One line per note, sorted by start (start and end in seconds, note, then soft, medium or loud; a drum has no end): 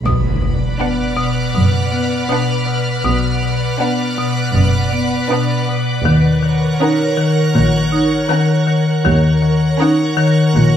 0.05 0.65 B1 soft
0.05 0.65 B2 soft
0.05 0.28 B2 soft
0.05 3.01 B4 soft
0.05 3.01 D5 soft
0.05 3.01 F#5 soft
0.05 5.63 B5 soft
0.05 impact soft
0.42 0.65 B2 soft
0.80 1.03 B3 soft
0.80 1.36 D4 soft
0.80 1.36 B4 soft
0.80 1.36 F#5 soft
0.80 5.64 F6 soft
1.17 1.40 B2 soft
1.55 2.15 F#1 soft
1.55 2.15 F#2 soft
1.55 1.77 B2 soft
1.92 2.15 B3 soft
2.29 2.52 B2 soft
2.29 2.86 D4 soft
2.29 2.86 B4 soft
2.29 2.86 F#5 soft
2.67 2.89 B2 soft
3.04 3.64 B1 soft
3.04 3.27 B2 soft
3.04 3.65 B2 soft
3.04 6.01 B4 soft
3.04 6.01 D5 soft
3.04 6.01 F#5 soft
3.42 3.65 B2 soft
3.79 4.02 B3 soft
3.79 4.36 D4 soft
3.79 4.36 B4 soft
3.79 4.35 F#5 soft
4.18 4.40 B2 soft
4.54 5.14 F#1 soft
4.54 5.14 F#2 soft
4.54 4.78 B2 soft
4.93 5.15 B3 soft
5.28 5.53 B2 soft
5.28 5.86 D4 soft
5.28 5.86 B4 soft
5.28 5.85 F#5 soft
5.68 5.90 B2 soft
6.04 6.64 D#2 soft
6.04 6.28 D#3 soft
6.04 9.04 A#4 soft
6.04 9.03 C#5 soft
6.04 9.02 F#5 soft
6.43 6.65 D#3 soft
6.80 7.37 C#4 soft
6.80 7.03 D#4 soft
6.80 7.36 A#4 soft
6.80 7.36 F#5 soft
7.18 7.40 D#3 soft
7.53 8.15 A#1 soft
7.53 8.14 A#2 soft
7.53 7.77 D#3 soft
7.92 8.15 D#4 soft
8.29 8.52 D#3 soft
8.29 8.85 C#4 soft
8.29 8.85 A#4 soft
8.29 8.86 F#5 soft
8.67 8.90 D#3 soft
9.04 9.64 D#2 soft
9.04 9.65 D#2 soft
9.04 9.28 D#3 soft
9.04 10.77 A#4 soft
9.04 10.77 C#5 soft
9.04 10.77 F#5 soft
9.42 9.65 D#3 soft
9.80 10.36 C#4 soft
9.80 10.02 D#4 soft
9.80 10.36 A#4 soft
9.80 10.36 F#5 soft
10.17 10.40 D#3 soft
10.54 10.77 A#1 medium
10.54 10.77 A#2 soft
10.54 10.77 D#3 soft